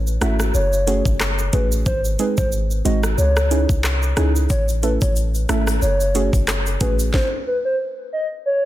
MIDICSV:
0, 0, Header, 1, 5, 480
1, 0, Start_track
1, 0, Tempo, 659341
1, 1357, Time_signature, 4, 2, 24, 8
1, 6298, End_track
2, 0, Start_track
2, 0, Title_t, "Soft synth lead"
2, 0, Program_c, 0, 80
2, 153, Note_on_c, 0, 76, 91
2, 260, Note_off_c, 0, 76, 0
2, 394, Note_on_c, 0, 73, 101
2, 747, Note_off_c, 0, 73, 0
2, 1113, Note_on_c, 0, 71, 74
2, 1220, Note_off_c, 0, 71, 0
2, 1354, Note_on_c, 0, 72, 117
2, 1461, Note_off_c, 0, 72, 0
2, 1597, Note_on_c, 0, 71, 89
2, 1702, Note_off_c, 0, 71, 0
2, 1728, Note_on_c, 0, 72, 85
2, 1812, Note_off_c, 0, 72, 0
2, 2073, Note_on_c, 0, 75, 82
2, 2180, Note_off_c, 0, 75, 0
2, 2312, Note_on_c, 0, 73, 106
2, 2666, Note_off_c, 0, 73, 0
2, 3272, Note_on_c, 0, 73, 105
2, 3379, Note_off_c, 0, 73, 0
2, 3517, Note_on_c, 0, 71, 80
2, 3622, Note_off_c, 0, 71, 0
2, 3651, Note_on_c, 0, 73, 67
2, 3734, Note_off_c, 0, 73, 0
2, 3996, Note_on_c, 0, 76, 88
2, 4102, Note_off_c, 0, 76, 0
2, 4236, Note_on_c, 0, 73, 104
2, 4588, Note_off_c, 0, 73, 0
2, 4956, Note_on_c, 0, 71, 79
2, 5062, Note_off_c, 0, 71, 0
2, 5196, Note_on_c, 0, 72, 112
2, 5301, Note_off_c, 0, 72, 0
2, 5436, Note_on_c, 0, 71, 90
2, 5542, Note_off_c, 0, 71, 0
2, 5570, Note_on_c, 0, 72, 84
2, 5653, Note_off_c, 0, 72, 0
2, 5916, Note_on_c, 0, 75, 86
2, 6022, Note_off_c, 0, 75, 0
2, 6157, Note_on_c, 0, 73, 117
2, 6298, Note_off_c, 0, 73, 0
2, 6298, End_track
3, 0, Start_track
3, 0, Title_t, "Synth pluck"
3, 0, Program_c, 1, 84
3, 153, Note_on_c, 1, 57, 77
3, 155, Note_on_c, 1, 61, 69
3, 156, Note_on_c, 1, 64, 72
3, 157, Note_on_c, 1, 66, 88
3, 263, Note_off_c, 1, 57, 0
3, 263, Note_off_c, 1, 61, 0
3, 264, Note_off_c, 1, 64, 0
3, 265, Note_off_c, 1, 66, 0
3, 633, Note_on_c, 1, 57, 74
3, 634, Note_on_c, 1, 61, 70
3, 636, Note_on_c, 1, 66, 69
3, 638, Note_on_c, 1, 68, 84
3, 743, Note_off_c, 1, 57, 0
3, 743, Note_off_c, 1, 61, 0
3, 744, Note_off_c, 1, 66, 0
3, 745, Note_off_c, 1, 68, 0
3, 1115, Note_on_c, 1, 57, 77
3, 1116, Note_on_c, 1, 61, 70
3, 1118, Note_on_c, 1, 66, 70
3, 1119, Note_on_c, 1, 68, 85
3, 1223, Note_off_c, 1, 57, 0
3, 1224, Note_off_c, 1, 61, 0
3, 1225, Note_off_c, 1, 66, 0
3, 1225, Note_off_c, 1, 68, 0
3, 1595, Note_on_c, 1, 56, 74
3, 1597, Note_on_c, 1, 60, 71
3, 1599, Note_on_c, 1, 63, 68
3, 1600, Note_on_c, 1, 68, 84
3, 1703, Note_off_c, 1, 56, 0
3, 1705, Note_off_c, 1, 60, 0
3, 1705, Note_off_c, 1, 63, 0
3, 1706, Note_off_c, 1, 68, 0
3, 2074, Note_on_c, 1, 56, 77
3, 2075, Note_on_c, 1, 60, 74
3, 2077, Note_on_c, 1, 63, 72
3, 2079, Note_on_c, 1, 66, 83
3, 2183, Note_off_c, 1, 56, 0
3, 2183, Note_off_c, 1, 60, 0
3, 2184, Note_off_c, 1, 63, 0
3, 2185, Note_off_c, 1, 66, 0
3, 2555, Note_on_c, 1, 61, 81
3, 2557, Note_on_c, 1, 63, 68
3, 2559, Note_on_c, 1, 64, 72
3, 2561, Note_on_c, 1, 68, 85
3, 2663, Note_off_c, 1, 61, 0
3, 2664, Note_off_c, 1, 63, 0
3, 2665, Note_off_c, 1, 64, 0
3, 2666, Note_off_c, 1, 68, 0
3, 3035, Note_on_c, 1, 61, 89
3, 3037, Note_on_c, 1, 63, 82
3, 3038, Note_on_c, 1, 64, 86
3, 3040, Note_on_c, 1, 68, 99
3, 3143, Note_off_c, 1, 61, 0
3, 3145, Note_off_c, 1, 63, 0
3, 3145, Note_off_c, 1, 64, 0
3, 3146, Note_off_c, 1, 68, 0
3, 3515, Note_on_c, 1, 57, 73
3, 3517, Note_on_c, 1, 61, 71
3, 3518, Note_on_c, 1, 64, 71
3, 3519, Note_on_c, 1, 69, 86
3, 3623, Note_off_c, 1, 57, 0
3, 3624, Note_off_c, 1, 61, 0
3, 3625, Note_off_c, 1, 64, 0
3, 3625, Note_off_c, 1, 69, 0
3, 3996, Note_on_c, 1, 57, 79
3, 3998, Note_on_c, 1, 61, 72
3, 3998, Note_on_c, 1, 64, 74
3, 4000, Note_on_c, 1, 69, 91
3, 4104, Note_off_c, 1, 57, 0
3, 4105, Note_off_c, 1, 61, 0
3, 4105, Note_off_c, 1, 64, 0
3, 4106, Note_off_c, 1, 69, 0
3, 4475, Note_on_c, 1, 57, 82
3, 4478, Note_on_c, 1, 61, 72
3, 4480, Note_on_c, 1, 66, 71
3, 4480, Note_on_c, 1, 68, 84
3, 4583, Note_off_c, 1, 57, 0
3, 4585, Note_off_c, 1, 61, 0
3, 4586, Note_off_c, 1, 66, 0
3, 4586, Note_off_c, 1, 68, 0
3, 4956, Note_on_c, 1, 57, 79
3, 4957, Note_on_c, 1, 61, 67
3, 4959, Note_on_c, 1, 66, 69
3, 4960, Note_on_c, 1, 68, 87
3, 5064, Note_off_c, 1, 57, 0
3, 5065, Note_off_c, 1, 61, 0
3, 5065, Note_off_c, 1, 66, 0
3, 5066, Note_off_c, 1, 68, 0
3, 6298, End_track
4, 0, Start_track
4, 0, Title_t, "808-style bass"
4, 0, Program_c, 2, 38
4, 0, Note_on_c, 2, 33, 109
4, 128, Note_off_c, 2, 33, 0
4, 155, Note_on_c, 2, 32, 88
4, 373, Note_off_c, 2, 32, 0
4, 394, Note_on_c, 2, 30, 100
4, 741, Note_off_c, 2, 30, 0
4, 768, Note_on_c, 2, 30, 93
4, 1086, Note_off_c, 2, 30, 0
4, 1116, Note_on_c, 2, 33, 94
4, 1333, Note_off_c, 2, 33, 0
4, 1355, Note_on_c, 2, 32, 101
4, 1573, Note_off_c, 2, 32, 0
4, 1732, Note_on_c, 2, 32, 91
4, 2048, Note_off_c, 2, 32, 0
4, 2075, Note_on_c, 2, 32, 93
4, 2293, Note_off_c, 2, 32, 0
4, 2314, Note_on_c, 2, 37, 108
4, 2661, Note_off_c, 2, 37, 0
4, 2689, Note_on_c, 2, 36, 100
4, 3006, Note_off_c, 2, 36, 0
4, 3036, Note_on_c, 2, 37, 97
4, 3253, Note_off_c, 2, 37, 0
4, 3276, Note_on_c, 2, 33, 108
4, 3622, Note_off_c, 2, 33, 0
4, 3653, Note_on_c, 2, 33, 113
4, 3969, Note_off_c, 2, 33, 0
4, 3997, Note_on_c, 2, 32, 96
4, 4214, Note_off_c, 2, 32, 0
4, 4237, Note_on_c, 2, 30, 101
4, 4582, Note_off_c, 2, 30, 0
4, 4609, Note_on_c, 2, 30, 88
4, 4927, Note_off_c, 2, 30, 0
4, 4957, Note_on_c, 2, 33, 96
4, 5174, Note_off_c, 2, 33, 0
4, 6298, End_track
5, 0, Start_track
5, 0, Title_t, "Drums"
5, 51, Note_on_c, 9, 82, 49
5, 124, Note_off_c, 9, 82, 0
5, 157, Note_on_c, 9, 37, 89
5, 157, Note_on_c, 9, 42, 76
5, 157, Note_on_c, 9, 82, 53
5, 229, Note_off_c, 9, 37, 0
5, 230, Note_off_c, 9, 42, 0
5, 230, Note_off_c, 9, 82, 0
5, 289, Note_on_c, 9, 37, 93
5, 290, Note_on_c, 9, 82, 85
5, 362, Note_off_c, 9, 37, 0
5, 362, Note_off_c, 9, 82, 0
5, 397, Note_on_c, 9, 82, 73
5, 469, Note_off_c, 9, 82, 0
5, 530, Note_on_c, 9, 82, 51
5, 603, Note_off_c, 9, 82, 0
5, 637, Note_on_c, 9, 42, 80
5, 637, Note_on_c, 9, 82, 57
5, 709, Note_off_c, 9, 42, 0
5, 709, Note_off_c, 9, 82, 0
5, 768, Note_on_c, 9, 36, 91
5, 772, Note_on_c, 9, 82, 74
5, 841, Note_off_c, 9, 36, 0
5, 845, Note_off_c, 9, 82, 0
5, 876, Note_on_c, 9, 37, 88
5, 876, Note_on_c, 9, 39, 90
5, 876, Note_on_c, 9, 82, 72
5, 949, Note_off_c, 9, 37, 0
5, 949, Note_off_c, 9, 39, 0
5, 949, Note_off_c, 9, 82, 0
5, 1010, Note_on_c, 9, 82, 50
5, 1083, Note_off_c, 9, 82, 0
5, 1114, Note_on_c, 9, 42, 67
5, 1114, Note_on_c, 9, 82, 50
5, 1115, Note_on_c, 9, 36, 93
5, 1186, Note_off_c, 9, 42, 0
5, 1186, Note_off_c, 9, 82, 0
5, 1188, Note_off_c, 9, 36, 0
5, 1252, Note_on_c, 9, 82, 80
5, 1325, Note_off_c, 9, 82, 0
5, 1355, Note_on_c, 9, 36, 112
5, 1355, Note_on_c, 9, 82, 73
5, 1427, Note_off_c, 9, 82, 0
5, 1428, Note_off_c, 9, 36, 0
5, 1490, Note_on_c, 9, 82, 62
5, 1562, Note_off_c, 9, 82, 0
5, 1595, Note_on_c, 9, 42, 71
5, 1595, Note_on_c, 9, 82, 54
5, 1667, Note_off_c, 9, 42, 0
5, 1667, Note_off_c, 9, 82, 0
5, 1728, Note_on_c, 9, 82, 72
5, 1731, Note_on_c, 9, 36, 109
5, 1801, Note_off_c, 9, 82, 0
5, 1804, Note_off_c, 9, 36, 0
5, 1836, Note_on_c, 9, 82, 76
5, 1908, Note_off_c, 9, 82, 0
5, 1971, Note_on_c, 9, 82, 47
5, 2044, Note_off_c, 9, 82, 0
5, 2078, Note_on_c, 9, 42, 74
5, 2078, Note_on_c, 9, 82, 53
5, 2151, Note_off_c, 9, 42, 0
5, 2151, Note_off_c, 9, 82, 0
5, 2209, Note_on_c, 9, 37, 92
5, 2210, Note_on_c, 9, 82, 89
5, 2282, Note_off_c, 9, 37, 0
5, 2283, Note_off_c, 9, 82, 0
5, 2316, Note_on_c, 9, 82, 72
5, 2389, Note_off_c, 9, 82, 0
5, 2450, Note_on_c, 9, 82, 52
5, 2451, Note_on_c, 9, 37, 98
5, 2523, Note_off_c, 9, 82, 0
5, 2524, Note_off_c, 9, 37, 0
5, 2557, Note_on_c, 9, 42, 81
5, 2557, Note_on_c, 9, 82, 59
5, 2629, Note_off_c, 9, 42, 0
5, 2629, Note_off_c, 9, 82, 0
5, 2688, Note_on_c, 9, 36, 91
5, 2692, Note_on_c, 9, 82, 78
5, 2761, Note_off_c, 9, 36, 0
5, 2765, Note_off_c, 9, 82, 0
5, 2796, Note_on_c, 9, 37, 85
5, 2796, Note_on_c, 9, 39, 86
5, 2796, Note_on_c, 9, 82, 74
5, 2869, Note_off_c, 9, 37, 0
5, 2869, Note_off_c, 9, 39, 0
5, 2869, Note_off_c, 9, 82, 0
5, 2931, Note_on_c, 9, 82, 48
5, 3004, Note_off_c, 9, 82, 0
5, 3035, Note_on_c, 9, 37, 91
5, 3035, Note_on_c, 9, 42, 69
5, 3035, Note_on_c, 9, 82, 48
5, 3107, Note_off_c, 9, 37, 0
5, 3108, Note_off_c, 9, 42, 0
5, 3108, Note_off_c, 9, 82, 0
5, 3173, Note_on_c, 9, 82, 79
5, 3245, Note_off_c, 9, 82, 0
5, 3275, Note_on_c, 9, 82, 80
5, 3277, Note_off_c, 9, 82, 0
5, 3277, Note_on_c, 9, 36, 110
5, 3277, Note_on_c, 9, 82, 70
5, 3349, Note_off_c, 9, 36, 0
5, 3350, Note_off_c, 9, 82, 0
5, 3411, Note_on_c, 9, 82, 63
5, 3413, Note_off_c, 9, 82, 0
5, 3413, Note_on_c, 9, 82, 57
5, 3486, Note_off_c, 9, 82, 0
5, 3517, Note_on_c, 9, 42, 71
5, 3517, Note_on_c, 9, 82, 51
5, 3590, Note_off_c, 9, 42, 0
5, 3590, Note_off_c, 9, 82, 0
5, 3650, Note_on_c, 9, 82, 76
5, 3652, Note_off_c, 9, 82, 0
5, 3652, Note_on_c, 9, 82, 70
5, 3653, Note_on_c, 9, 36, 104
5, 3725, Note_off_c, 9, 82, 0
5, 3726, Note_off_c, 9, 36, 0
5, 3757, Note_on_c, 9, 82, 73
5, 3758, Note_off_c, 9, 82, 0
5, 3758, Note_on_c, 9, 82, 71
5, 3831, Note_off_c, 9, 82, 0
5, 3893, Note_on_c, 9, 82, 51
5, 3966, Note_off_c, 9, 82, 0
5, 3998, Note_on_c, 9, 37, 87
5, 3999, Note_on_c, 9, 42, 77
5, 3999, Note_on_c, 9, 82, 55
5, 4071, Note_off_c, 9, 37, 0
5, 4072, Note_off_c, 9, 42, 0
5, 4072, Note_off_c, 9, 82, 0
5, 4130, Note_on_c, 9, 37, 97
5, 4131, Note_on_c, 9, 82, 85
5, 4133, Note_off_c, 9, 82, 0
5, 4133, Note_on_c, 9, 82, 76
5, 4203, Note_off_c, 9, 37, 0
5, 4205, Note_off_c, 9, 82, 0
5, 4237, Note_on_c, 9, 82, 71
5, 4239, Note_off_c, 9, 82, 0
5, 4239, Note_on_c, 9, 82, 75
5, 4312, Note_off_c, 9, 82, 0
5, 4371, Note_on_c, 9, 82, 53
5, 4372, Note_off_c, 9, 82, 0
5, 4372, Note_on_c, 9, 82, 52
5, 4445, Note_off_c, 9, 82, 0
5, 4477, Note_on_c, 9, 42, 81
5, 4477, Note_on_c, 9, 82, 59
5, 4550, Note_off_c, 9, 42, 0
5, 4550, Note_off_c, 9, 82, 0
5, 4609, Note_on_c, 9, 36, 99
5, 4613, Note_on_c, 9, 82, 73
5, 4614, Note_off_c, 9, 82, 0
5, 4614, Note_on_c, 9, 82, 75
5, 4682, Note_off_c, 9, 36, 0
5, 4686, Note_off_c, 9, 82, 0
5, 4718, Note_on_c, 9, 37, 91
5, 4718, Note_on_c, 9, 39, 90
5, 4718, Note_on_c, 9, 82, 68
5, 4791, Note_off_c, 9, 37, 0
5, 4791, Note_off_c, 9, 39, 0
5, 4791, Note_off_c, 9, 82, 0
5, 4851, Note_on_c, 9, 82, 61
5, 4924, Note_off_c, 9, 82, 0
5, 4955, Note_on_c, 9, 42, 70
5, 4955, Note_on_c, 9, 82, 51
5, 4957, Note_on_c, 9, 36, 94
5, 4958, Note_off_c, 9, 82, 0
5, 4958, Note_on_c, 9, 82, 46
5, 5028, Note_off_c, 9, 42, 0
5, 5029, Note_off_c, 9, 36, 0
5, 5031, Note_off_c, 9, 82, 0
5, 5092, Note_on_c, 9, 82, 78
5, 5165, Note_off_c, 9, 82, 0
5, 5196, Note_on_c, 9, 36, 101
5, 5196, Note_on_c, 9, 38, 86
5, 5269, Note_off_c, 9, 36, 0
5, 5269, Note_off_c, 9, 38, 0
5, 6298, End_track
0, 0, End_of_file